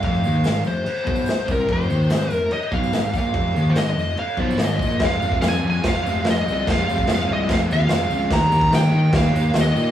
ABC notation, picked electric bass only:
X:1
M:4/4
L:1/8
Q:1/4=145
K:Fm
V:1 name="Picked electric bass" clef=bass
F,,, E,, A,,, F,,, z =B,,, z C,, | F,,, E,, A,,, F,,, z =B,,, A,,, _B,,, | F,,, E,, A,,, F,,, z =B,,, A,,, _B,,, | F,,, F,,, F,, F,, F,,, F,,, F,,, C,, |
F,,, F,,, F,,, C,, F,,, E,, F,,, D,, | E,, E,, E, E, E,, E,, E,, B,, |]